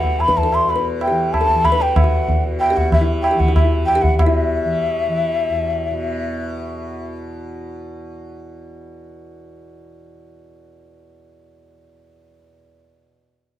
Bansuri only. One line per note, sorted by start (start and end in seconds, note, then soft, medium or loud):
0.00 0.22 F#5 loud
0.20 0.39 B5 loud
0.37 0.56 A5 loud
0.55 0.72 C6 loud
0.70 0.85 B5 medium
1.02 1.34 G5 medium
1.33 1.67 A5 loud
1.65 1.83 B5 loud
1.82 1.99 G5 loud
1.97 2.45 F#5 medium
2.60 2.78 G5 loud
2.77 2.92 F#5 medium
2.93 3.08 E5 medium
3.23 3.41 G5 loud
3.40 3.55 F#5 loud
3.56 3.70 E5 medium
3.86 4.03 G5 loud
4.02 4.17 F#5 loud
4.18 4.24 F#5 medium
4.23 7.11 E5 loud